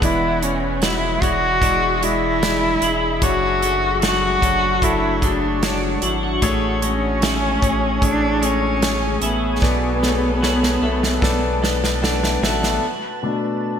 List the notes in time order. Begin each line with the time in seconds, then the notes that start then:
Already playing: A3 D4
0.00 E1 E2 E3 G#3 E4 G#4 D5 E5, kick, closed hi-hat
0.42 G#3 C#4 E4 C#5, closed hi-hat
0.82 G#3 E4 F#4, snare, closed hi-hat
1.22 E1 G#3 E4 F#4 D5, kick, closed hi-hat
1.61 E1 G#3 D4 E4 D5, kick, closed hi-hat
2.01 G#3 E4 D5, closed hi-hat
2.42 G#3 D4 E4 D5, snare, closed hi-hat
2.82 E1 G#3 E4 G#4, closed hi-hat
3.20 F#1 F#2 F#3 D4 F#4 C#5 C#6, kick, closed hi-hat
3.62 F#3 A3 D4 C#5, closed hi-hat
4.01 F#3 D4 F#4 G#4, snare, closed hi-hat
4.41 F#1 F#3 A3 D4 C#5, kick, closed hi-hat
4.82 F#1 F#3 D4 E4 A4, kick, closed hi-hat
5.21 F#3 A3 D4 G#4, kick, closed hi-hat
5.61 F#3 D4 C#5, snare, closed hi-hat
6.02 G#1 F#3 D4 E4, closed hi-hat
6.23 F#4
6.42 A1 A2 A3 G#4 C#5 G#5, kick, closed hi-hat
6.81 G#3 A3 C#4 G#4 C#5, closed hi-hat
7.21 A3 E4 G#4 E5, snare, closed hi-hat
7.61 A1 G#3 A3 G#4 C#5, kick, closed hi-hat
8.01 A1 A3 D4 G#4 C#5, kick, closed hi-hat
8.41 G#3 A3 C#4 G#4 C#5, closed hi-hat
8.82 A3 C#4 G#4 C#5, snare, closed hi-hat
9.21 A1 A3 B3 E4 G#4 E5, closed hi-hat
9.62 B1 B2 B3 A4 B4 D5 A5, kick, snare
10.02 A3 B3 A4 C#5, snare
10.41 B3 F#4 A4 C#5, snare
10.63 snare
10.82 B1 A3 B3 A4 E5
11.03 snare
11.21 B1 B3 D4 A4 D5, kick, snare
11.61 A3 B3 A4 D5 A5, snare
11.84 snare
12.02 B3 D4 A4 D5 F#5, snare
12.22 E5, snare
12.42 A1 B3 F#4 A4 D5 E5, snare
12.63 snare
12.81 B3 A4 D5
13.23 B2 A3 D4